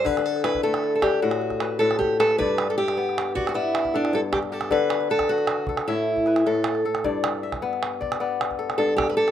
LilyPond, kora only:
<<
  \new Staff \with { instrumentName = "Kora" } { \time 12/8 \key g \major \tempo 4. = 103 a'8 r8 e'4. d'4 r8 b'8 a'4 b'8 | d''4 e''4. d''8 d''4 a'4. g'8 | a'4 b'4. a'8 e''4 b'4. a'8 | d''4 e''4. d''8 d''4 a'4. g'8 | }
  \new Staff \with { instrumentName = "Kora" } { \clef bass \time 12/8 \key g \major d4 r8 a4 r8 a,4 r8 a,4 r8 | g,4 r8 b4 r8 b4 r8 g,4 r8 | d4 r8 fis'4 r8 a,4 r8 a,4 r8 | g,4 r8 b4 r8 b4 r8 g,4 r8 | }
>>